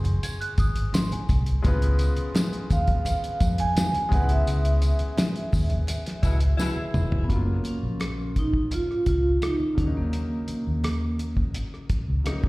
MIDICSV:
0, 0, Header, 1, 8, 480
1, 0, Start_track
1, 0, Key_signature, 6, "major"
1, 0, Tempo, 707547
1, 1114, Time_signature, 4, 2, 24, 8
1, 8471, End_track
2, 0, Start_track
2, 0, Title_t, "Celesta"
2, 0, Program_c, 0, 8
2, 158, Note_on_c, 0, 92, 74
2, 270, Note_off_c, 0, 92, 0
2, 275, Note_on_c, 0, 90, 84
2, 389, Note_off_c, 0, 90, 0
2, 401, Note_on_c, 0, 87, 79
2, 626, Note_off_c, 0, 87, 0
2, 636, Note_on_c, 0, 84, 84
2, 749, Note_off_c, 0, 84, 0
2, 764, Note_on_c, 0, 80, 79
2, 1101, Note_off_c, 0, 80, 0
2, 8471, End_track
3, 0, Start_track
3, 0, Title_t, "Vibraphone"
3, 0, Program_c, 1, 11
3, 1847, Note_on_c, 1, 77, 92
3, 2442, Note_on_c, 1, 80, 110
3, 2457, Note_off_c, 1, 77, 0
3, 2799, Note_on_c, 1, 78, 93
3, 2807, Note_off_c, 1, 80, 0
3, 2919, Note_off_c, 1, 78, 0
3, 2928, Note_on_c, 1, 76, 82
3, 4453, Note_off_c, 1, 76, 0
3, 4914, Note_on_c, 1, 59, 74
3, 4957, Note_off_c, 1, 59, 0
3, 4972, Note_on_c, 1, 58, 76
3, 5207, Note_on_c, 1, 61, 74
3, 5209, Note_off_c, 1, 58, 0
3, 5690, Note_on_c, 1, 63, 78
3, 5695, Note_off_c, 1, 61, 0
3, 5795, Note_off_c, 1, 63, 0
3, 5928, Note_on_c, 1, 65, 82
3, 6157, Note_off_c, 1, 65, 0
3, 6165, Note_on_c, 1, 65, 80
3, 6407, Note_off_c, 1, 65, 0
3, 6407, Note_on_c, 1, 63, 82
3, 6625, Note_off_c, 1, 63, 0
3, 6641, Note_on_c, 1, 61, 67
3, 6762, Note_off_c, 1, 61, 0
3, 6765, Note_on_c, 1, 58, 65
3, 7696, Note_off_c, 1, 58, 0
3, 8471, End_track
4, 0, Start_track
4, 0, Title_t, "Grand piano"
4, 0, Program_c, 2, 0
4, 0, Control_c, 2, 64, 127
4, 0, Note_on_c, 2, 56, 67
4, 0, Note_on_c, 2, 60, 63
4, 0, Note_on_c, 2, 63, 61
4, 0, Note_on_c, 2, 66, 62
4, 0, Note_on_c, 2, 72, 79
4, 1077, Note_off_c, 2, 56, 0
4, 1082, Note_off_c, 2, 60, 0
4, 1086, Note_off_c, 2, 63, 0
4, 1090, Note_off_c, 2, 66, 0
4, 1094, Note_off_c, 2, 72, 0
4, 1102, Note_on_c, 2, 56, 79
4, 1110, Note_on_c, 2, 59, 71
4, 1119, Note_on_c, 2, 61, 73
4, 1124, Control_c, 2, 64, 0
4, 1129, Note_on_c, 2, 65, 81
4, 1136, Note_on_c, 2, 71, 96
4, 1232, Control_c, 2, 64, 127
4, 2759, Note_off_c, 2, 56, 0
4, 2763, Note_off_c, 2, 59, 0
4, 2767, Note_off_c, 2, 61, 0
4, 2772, Note_off_c, 2, 65, 0
4, 2774, Note_on_c, 2, 56, 69
4, 2776, Note_off_c, 2, 71, 0
4, 2783, Note_on_c, 2, 61, 63
4, 2791, Note_on_c, 2, 59, 60
4, 2801, Control_c, 2, 64, 0
4, 2801, Note_on_c, 2, 64, 59
4, 2808, Note_on_c, 2, 71, 73
4, 2935, Control_c, 2, 64, 127
4, 4676, Note_off_c, 2, 56, 0
4, 4681, Note_off_c, 2, 61, 0
4, 4685, Note_off_c, 2, 59, 0
4, 4690, Note_off_c, 2, 64, 0
4, 4693, Note_off_c, 2, 71, 0
4, 4936, Note_on_c, 2, 49, 51
4, 4946, Note_on_c, 2, 54, 51
4, 4959, Note_on_c, 2, 58, 46
4, 4960, Control_c, 2, 64, 0
4, 4967, Note_on_c, 2, 65, 61
4, 5090, Control_c, 2, 64, 127
4, 6600, Note_off_c, 2, 49, 0
4, 6605, Note_off_c, 2, 54, 0
4, 6612, Note_off_c, 2, 58, 0
4, 6615, Note_on_c, 2, 49, 56
4, 6616, Note_off_c, 2, 65, 0
4, 6627, Note_on_c, 2, 54, 49
4, 6640, Note_on_c, 2, 58, 49
4, 6645, Control_c, 2, 64, 0
4, 6650, Note_on_c, 2, 62, 52
4, 6687, Note_off_c, 2, 62, 0
4, 6697, Note_on_c, 2, 63, 56
4, 6778, Control_c, 2, 64, 127
4, 8282, Note_off_c, 2, 49, 0
4, 8288, Note_off_c, 2, 54, 0
4, 8295, Note_off_c, 2, 58, 0
4, 8306, Note_on_c, 2, 49, 47
4, 8313, Note_off_c, 2, 63, 0
4, 8313, Note_on_c, 2, 54, 40
4, 8318, Note_on_c, 2, 58, 43
4, 8323, Note_on_c, 2, 63, 52
4, 8471, Note_off_c, 2, 49, 0
4, 8471, Note_off_c, 2, 54, 0
4, 8471, Note_off_c, 2, 58, 0
4, 8471, Note_off_c, 2, 63, 0
4, 8471, End_track
5, 0, Start_track
5, 0, Title_t, "Horn section"
5, 0, Program_c, 3, 61
5, 4225, Note_on_c, 3, 56, 72
5, 4226, Note_on_c, 3, 47, 71
5, 4226, Note_on_c, 3, 64, 80
5, 4330, Note_off_c, 3, 47, 0
5, 4330, Note_off_c, 3, 56, 0
5, 4331, Note_off_c, 3, 64, 0
5, 4463, Note_on_c, 3, 64, 85
5, 4464, Note_on_c, 3, 47, 82
5, 4464, Note_on_c, 3, 56, 75
5, 4924, Note_off_c, 3, 47, 0
5, 4924, Note_off_c, 3, 64, 0
5, 4925, Note_off_c, 3, 56, 0
5, 8471, End_track
6, 0, Start_track
6, 0, Title_t, "Fingered electric bass"
6, 0, Program_c, 4, 33
6, 0, Note_on_c, 4, 30, 89
6, 117, Note_off_c, 4, 30, 0
6, 395, Note_on_c, 4, 32, 85
6, 593, Note_off_c, 4, 32, 0
6, 879, Note_on_c, 4, 36, 100
6, 1075, Note_off_c, 4, 36, 0
6, 1119, Note_on_c, 4, 37, 104
6, 1414, Note_off_c, 4, 37, 0
6, 1836, Note_on_c, 4, 39, 90
6, 2033, Note_off_c, 4, 39, 0
6, 2314, Note_on_c, 4, 41, 100
6, 2512, Note_off_c, 4, 41, 0
6, 2796, Note_on_c, 4, 37, 94
6, 2993, Note_off_c, 4, 37, 0
6, 3035, Note_on_c, 4, 37, 92
6, 3331, Note_off_c, 4, 37, 0
6, 3753, Note_on_c, 4, 39, 85
6, 3951, Note_off_c, 4, 39, 0
6, 4228, Note_on_c, 4, 37, 89
6, 4428, Note_off_c, 4, 37, 0
6, 4714, Note_on_c, 4, 29, 91
6, 4912, Note_off_c, 4, 29, 0
6, 4953, Note_on_c, 4, 30, 79
6, 5151, Note_off_c, 4, 30, 0
6, 5313, Note_on_c, 4, 34, 75
6, 5711, Note_off_c, 4, 34, 0
6, 6151, Note_on_c, 4, 37, 66
6, 6352, Note_off_c, 4, 37, 0
6, 6635, Note_on_c, 4, 39, 77
6, 6933, Note_off_c, 4, 39, 0
6, 7239, Note_on_c, 4, 39, 67
6, 7812, Note_off_c, 4, 39, 0
6, 8197, Note_on_c, 4, 37, 64
6, 8298, Note_off_c, 4, 37, 0
6, 8437, Note_on_c, 4, 37, 73
6, 8471, Note_off_c, 4, 37, 0
6, 8471, End_track
7, 0, Start_track
7, 0, Title_t, "Muted fingered electric bass strokes"
7, 1480, Note_on_c, 9, 29, 46
7, 1548, Note_off_c, 9, 29, 0
7, 3396, Note_on_c, 9, 29, 45
7, 3464, Note_off_c, 9, 29, 0
7, 7116, Note_on_c, 9, 29, 38
7, 7184, Note_off_c, 9, 29, 0
7, 8072, Note_on_c, 9, 29, 36
7, 8140, Note_off_c, 9, 29, 0
7, 8317, Note_on_c, 9, 29, 37
7, 8385, Note_off_c, 9, 29, 0
7, 8471, End_track
8, 0, Start_track
8, 0, Title_t, "Drums"
8, 27, Note_on_c, 9, 64, 75
8, 32, Note_on_c, 9, 42, 49
8, 95, Note_off_c, 9, 64, 0
8, 100, Note_off_c, 9, 42, 0
8, 156, Note_on_c, 9, 62, 55
8, 157, Note_on_c, 9, 42, 84
8, 163, Note_on_c, 9, 54, 58
8, 224, Note_off_c, 9, 62, 0
8, 225, Note_off_c, 9, 42, 0
8, 231, Note_off_c, 9, 54, 0
8, 281, Note_on_c, 9, 42, 52
8, 349, Note_off_c, 9, 42, 0
8, 392, Note_on_c, 9, 42, 75
8, 393, Note_on_c, 9, 36, 93
8, 394, Note_on_c, 9, 62, 30
8, 401, Note_on_c, 9, 54, 53
8, 460, Note_off_c, 9, 42, 0
8, 461, Note_off_c, 9, 36, 0
8, 462, Note_off_c, 9, 62, 0
8, 469, Note_off_c, 9, 54, 0
8, 513, Note_on_c, 9, 42, 59
8, 580, Note_off_c, 9, 42, 0
8, 630, Note_on_c, 9, 63, 72
8, 637, Note_on_c, 9, 42, 94
8, 640, Note_on_c, 9, 54, 95
8, 645, Note_on_c, 9, 38, 99
8, 698, Note_off_c, 9, 63, 0
8, 705, Note_off_c, 9, 42, 0
8, 708, Note_off_c, 9, 54, 0
8, 712, Note_off_c, 9, 38, 0
8, 755, Note_on_c, 9, 63, 82
8, 759, Note_on_c, 9, 42, 50
8, 822, Note_off_c, 9, 63, 0
8, 827, Note_off_c, 9, 42, 0
8, 872, Note_on_c, 9, 54, 30
8, 876, Note_on_c, 9, 36, 86
8, 877, Note_on_c, 9, 63, 50
8, 880, Note_on_c, 9, 42, 76
8, 940, Note_off_c, 9, 54, 0
8, 944, Note_off_c, 9, 36, 0
8, 945, Note_off_c, 9, 63, 0
8, 948, Note_off_c, 9, 42, 0
8, 993, Note_on_c, 9, 42, 55
8, 1061, Note_off_c, 9, 42, 0
8, 1113, Note_on_c, 9, 54, 34
8, 1117, Note_on_c, 9, 36, 109
8, 1118, Note_on_c, 9, 42, 82
8, 1181, Note_off_c, 9, 54, 0
8, 1185, Note_off_c, 9, 36, 0
8, 1185, Note_off_c, 9, 42, 0
8, 1235, Note_on_c, 9, 42, 55
8, 1303, Note_off_c, 9, 42, 0
8, 1350, Note_on_c, 9, 42, 76
8, 1350, Note_on_c, 9, 62, 52
8, 1362, Note_on_c, 9, 54, 43
8, 1417, Note_off_c, 9, 42, 0
8, 1418, Note_off_c, 9, 62, 0
8, 1430, Note_off_c, 9, 54, 0
8, 1469, Note_on_c, 9, 42, 48
8, 1537, Note_off_c, 9, 42, 0
8, 1592, Note_on_c, 9, 63, 85
8, 1597, Note_on_c, 9, 42, 98
8, 1599, Note_on_c, 9, 38, 113
8, 1603, Note_on_c, 9, 54, 86
8, 1659, Note_off_c, 9, 63, 0
8, 1665, Note_off_c, 9, 42, 0
8, 1667, Note_off_c, 9, 38, 0
8, 1671, Note_off_c, 9, 54, 0
8, 1715, Note_on_c, 9, 42, 49
8, 1783, Note_off_c, 9, 42, 0
8, 1831, Note_on_c, 9, 62, 42
8, 1835, Note_on_c, 9, 36, 83
8, 1835, Note_on_c, 9, 42, 60
8, 1839, Note_on_c, 9, 54, 53
8, 1899, Note_off_c, 9, 62, 0
8, 1903, Note_off_c, 9, 36, 0
8, 1903, Note_off_c, 9, 42, 0
8, 1907, Note_off_c, 9, 54, 0
8, 1950, Note_on_c, 9, 42, 45
8, 1953, Note_on_c, 9, 36, 80
8, 2018, Note_off_c, 9, 42, 0
8, 2021, Note_off_c, 9, 36, 0
8, 2070, Note_on_c, 9, 62, 53
8, 2070, Note_on_c, 9, 64, 78
8, 2075, Note_on_c, 9, 42, 91
8, 2082, Note_on_c, 9, 54, 58
8, 2138, Note_off_c, 9, 62, 0
8, 2138, Note_off_c, 9, 64, 0
8, 2142, Note_off_c, 9, 42, 0
8, 2150, Note_off_c, 9, 54, 0
8, 2197, Note_on_c, 9, 42, 50
8, 2265, Note_off_c, 9, 42, 0
8, 2310, Note_on_c, 9, 42, 81
8, 2311, Note_on_c, 9, 36, 88
8, 2315, Note_on_c, 9, 62, 34
8, 2316, Note_on_c, 9, 54, 52
8, 2378, Note_off_c, 9, 42, 0
8, 2379, Note_off_c, 9, 36, 0
8, 2383, Note_off_c, 9, 62, 0
8, 2384, Note_off_c, 9, 54, 0
8, 2430, Note_on_c, 9, 42, 59
8, 2498, Note_off_c, 9, 42, 0
8, 2548, Note_on_c, 9, 63, 74
8, 2555, Note_on_c, 9, 42, 88
8, 2559, Note_on_c, 9, 54, 94
8, 2562, Note_on_c, 9, 38, 107
8, 2616, Note_off_c, 9, 63, 0
8, 2622, Note_off_c, 9, 42, 0
8, 2627, Note_off_c, 9, 54, 0
8, 2630, Note_off_c, 9, 38, 0
8, 2669, Note_on_c, 9, 63, 87
8, 2676, Note_on_c, 9, 42, 52
8, 2737, Note_off_c, 9, 63, 0
8, 2744, Note_off_c, 9, 42, 0
8, 2793, Note_on_c, 9, 54, 29
8, 2794, Note_on_c, 9, 36, 105
8, 2794, Note_on_c, 9, 63, 54
8, 2797, Note_on_c, 9, 42, 70
8, 2861, Note_off_c, 9, 54, 0
8, 2862, Note_off_c, 9, 36, 0
8, 2862, Note_off_c, 9, 63, 0
8, 2865, Note_off_c, 9, 42, 0
8, 2910, Note_on_c, 9, 42, 57
8, 2978, Note_off_c, 9, 42, 0
8, 3033, Note_on_c, 9, 54, 33
8, 3035, Note_on_c, 9, 42, 76
8, 3101, Note_off_c, 9, 54, 0
8, 3103, Note_off_c, 9, 42, 0
8, 3154, Note_on_c, 9, 42, 61
8, 3222, Note_off_c, 9, 42, 0
8, 3267, Note_on_c, 9, 62, 52
8, 3269, Note_on_c, 9, 42, 73
8, 3274, Note_on_c, 9, 54, 44
8, 3335, Note_off_c, 9, 62, 0
8, 3336, Note_off_c, 9, 42, 0
8, 3342, Note_off_c, 9, 54, 0
8, 3385, Note_on_c, 9, 42, 52
8, 3453, Note_off_c, 9, 42, 0
8, 3510, Note_on_c, 9, 63, 87
8, 3515, Note_on_c, 9, 42, 95
8, 3517, Note_on_c, 9, 38, 107
8, 3517, Note_on_c, 9, 54, 78
8, 3578, Note_off_c, 9, 63, 0
8, 3583, Note_off_c, 9, 42, 0
8, 3585, Note_off_c, 9, 38, 0
8, 3585, Note_off_c, 9, 54, 0
8, 3633, Note_on_c, 9, 42, 47
8, 3701, Note_off_c, 9, 42, 0
8, 3748, Note_on_c, 9, 62, 44
8, 3752, Note_on_c, 9, 36, 77
8, 3753, Note_on_c, 9, 46, 50
8, 3756, Note_on_c, 9, 54, 53
8, 3816, Note_off_c, 9, 62, 0
8, 3820, Note_off_c, 9, 36, 0
8, 3821, Note_off_c, 9, 46, 0
8, 3824, Note_off_c, 9, 54, 0
8, 3863, Note_on_c, 9, 64, 76
8, 3866, Note_on_c, 9, 42, 49
8, 3931, Note_off_c, 9, 64, 0
8, 3934, Note_off_c, 9, 42, 0
8, 3984, Note_on_c, 9, 62, 56
8, 3990, Note_on_c, 9, 42, 97
8, 3997, Note_on_c, 9, 54, 54
8, 4052, Note_off_c, 9, 62, 0
8, 4058, Note_off_c, 9, 42, 0
8, 4065, Note_off_c, 9, 54, 0
8, 4114, Note_on_c, 9, 42, 53
8, 4121, Note_on_c, 9, 38, 33
8, 4182, Note_off_c, 9, 42, 0
8, 4189, Note_off_c, 9, 38, 0
8, 4227, Note_on_c, 9, 36, 84
8, 4227, Note_on_c, 9, 42, 80
8, 4230, Note_on_c, 9, 62, 33
8, 4233, Note_on_c, 9, 54, 48
8, 4294, Note_off_c, 9, 42, 0
8, 4295, Note_off_c, 9, 36, 0
8, 4298, Note_off_c, 9, 62, 0
8, 4301, Note_off_c, 9, 54, 0
8, 4344, Note_on_c, 9, 42, 60
8, 4412, Note_off_c, 9, 42, 0
8, 4467, Note_on_c, 9, 63, 73
8, 4474, Note_on_c, 9, 54, 99
8, 4475, Note_on_c, 9, 38, 57
8, 4535, Note_off_c, 9, 63, 0
8, 4541, Note_off_c, 9, 54, 0
8, 4543, Note_off_c, 9, 38, 0
8, 4586, Note_on_c, 9, 63, 84
8, 4654, Note_off_c, 9, 63, 0
8, 4709, Note_on_c, 9, 45, 97
8, 4709, Note_on_c, 9, 63, 53
8, 4712, Note_on_c, 9, 54, 28
8, 4777, Note_off_c, 9, 45, 0
8, 4777, Note_off_c, 9, 63, 0
8, 4780, Note_off_c, 9, 54, 0
8, 4830, Note_on_c, 9, 43, 93
8, 4898, Note_off_c, 9, 43, 0
8, 4951, Note_on_c, 9, 36, 90
8, 4952, Note_on_c, 9, 42, 63
8, 5019, Note_off_c, 9, 36, 0
8, 5020, Note_off_c, 9, 42, 0
8, 5183, Note_on_c, 9, 62, 42
8, 5188, Note_on_c, 9, 42, 55
8, 5250, Note_off_c, 9, 62, 0
8, 5256, Note_off_c, 9, 42, 0
8, 5426, Note_on_c, 9, 63, 65
8, 5431, Note_on_c, 9, 42, 81
8, 5433, Note_on_c, 9, 37, 90
8, 5494, Note_off_c, 9, 63, 0
8, 5499, Note_off_c, 9, 42, 0
8, 5501, Note_off_c, 9, 37, 0
8, 5672, Note_on_c, 9, 36, 61
8, 5672, Note_on_c, 9, 42, 51
8, 5673, Note_on_c, 9, 62, 36
8, 5740, Note_off_c, 9, 36, 0
8, 5740, Note_off_c, 9, 42, 0
8, 5741, Note_off_c, 9, 62, 0
8, 5790, Note_on_c, 9, 36, 65
8, 5858, Note_off_c, 9, 36, 0
8, 5909, Note_on_c, 9, 62, 44
8, 5909, Note_on_c, 9, 64, 66
8, 5912, Note_on_c, 9, 42, 73
8, 5977, Note_off_c, 9, 62, 0
8, 5977, Note_off_c, 9, 64, 0
8, 5980, Note_off_c, 9, 42, 0
8, 6043, Note_on_c, 9, 37, 26
8, 6111, Note_off_c, 9, 37, 0
8, 6148, Note_on_c, 9, 42, 62
8, 6149, Note_on_c, 9, 36, 64
8, 6215, Note_off_c, 9, 42, 0
8, 6217, Note_off_c, 9, 36, 0
8, 6390, Note_on_c, 9, 63, 63
8, 6391, Note_on_c, 9, 42, 73
8, 6398, Note_on_c, 9, 37, 84
8, 6458, Note_off_c, 9, 63, 0
8, 6459, Note_off_c, 9, 42, 0
8, 6466, Note_off_c, 9, 37, 0
8, 6513, Note_on_c, 9, 63, 69
8, 6580, Note_off_c, 9, 63, 0
8, 6633, Note_on_c, 9, 36, 90
8, 6634, Note_on_c, 9, 42, 62
8, 6642, Note_on_c, 9, 37, 30
8, 6701, Note_off_c, 9, 36, 0
8, 6702, Note_off_c, 9, 42, 0
8, 6710, Note_off_c, 9, 37, 0
8, 6872, Note_on_c, 9, 42, 64
8, 6940, Note_off_c, 9, 42, 0
8, 7108, Note_on_c, 9, 42, 58
8, 7112, Note_on_c, 9, 62, 40
8, 7176, Note_off_c, 9, 42, 0
8, 7179, Note_off_c, 9, 62, 0
8, 7352, Note_on_c, 9, 63, 67
8, 7355, Note_on_c, 9, 42, 79
8, 7357, Note_on_c, 9, 37, 88
8, 7420, Note_off_c, 9, 63, 0
8, 7423, Note_off_c, 9, 42, 0
8, 7425, Note_off_c, 9, 37, 0
8, 7593, Note_on_c, 9, 42, 52
8, 7597, Note_on_c, 9, 62, 36
8, 7661, Note_off_c, 9, 42, 0
8, 7665, Note_off_c, 9, 62, 0
8, 7712, Note_on_c, 9, 36, 69
8, 7712, Note_on_c, 9, 64, 58
8, 7779, Note_off_c, 9, 36, 0
8, 7780, Note_off_c, 9, 64, 0
8, 7832, Note_on_c, 9, 42, 67
8, 7840, Note_on_c, 9, 62, 46
8, 7899, Note_off_c, 9, 42, 0
8, 7908, Note_off_c, 9, 62, 0
8, 7964, Note_on_c, 9, 37, 31
8, 8031, Note_off_c, 9, 37, 0
8, 8070, Note_on_c, 9, 42, 60
8, 8071, Note_on_c, 9, 36, 77
8, 8079, Note_on_c, 9, 62, 24
8, 8138, Note_off_c, 9, 42, 0
8, 8139, Note_off_c, 9, 36, 0
8, 8147, Note_off_c, 9, 62, 0
8, 8314, Note_on_c, 9, 63, 62
8, 8315, Note_on_c, 9, 42, 70
8, 8322, Note_on_c, 9, 37, 80
8, 8381, Note_off_c, 9, 63, 0
8, 8383, Note_off_c, 9, 42, 0
8, 8390, Note_off_c, 9, 37, 0
8, 8434, Note_on_c, 9, 63, 72
8, 8436, Note_on_c, 9, 36, 88
8, 8471, Note_off_c, 9, 36, 0
8, 8471, Note_off_c, 9, 63, 0
8, 8471, End_track
0, 0, End_of_file